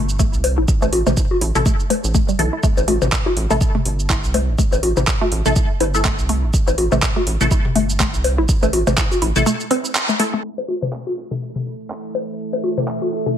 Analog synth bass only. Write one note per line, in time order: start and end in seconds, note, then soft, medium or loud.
0.00 0.35 G1 medium
0.33 0.59 C2 medium
0.58 0.65 A1 medium
0.82 0.90 A1 loud
0.92 1.02 A1 medium
1.06 1.14 A1 medium
1.41 1.51 A1 loud
1.55 1.63 A1 medium
2.04 2.20 A1 medium
2.39 2.49 B1 medium
2.77 2.85 A1 loud
2.88 2.98 A1 medium
3.02 3.09 A1 medium
3.36 3.46 A1 loud
3.50 3.58 A1 medium
3.85 4.25 G1 medium
4.24 4.50 C2 loud
4.48 4.56 A1 medium
4.72 4.80 A1 loud
4.83 4.93 A1 medium
4.97 5.04 A1 medium
5.32 5.42 A1 loud
5.46 5.53 A1 medium
5.80 6.20 G1 medium
6.19 6.45 C2 loud
6.43 6.51 A1 medium
6.68 6.75 A1 loud
6.78 6.88 A1 medium
6.92 6.99 A1 medium
7.27 7.37 A1 loud
7.41 7.48 A1 medium
7.76 8.15 G1 medium
8.14 8.40 C2 loud
8.38 8.46 A1 medium
8.63 8.70 A1 loud
8.73 8.83 A1 medium
8.87 8.95 A1 medium
9.22 9.32 A1 loud
9.36 9.43 A1 medium
10.58 10.65 A1 loud
10.68 10.78 A1 medium
10.82 10.90 A1 medium
11.17 11.27 A1 loud
11.31 11.38 A1 medium
11.66 12.06 G1 medium
12.04 12.30 C2 medium
12.29 12.36 A1 medium
12.53 12.60 A1 loud
12.63 12.73 A1 medium
12.77 12.85 A1 medium
13.12 13.22 A1 loud
13.26 13.34 A1 medium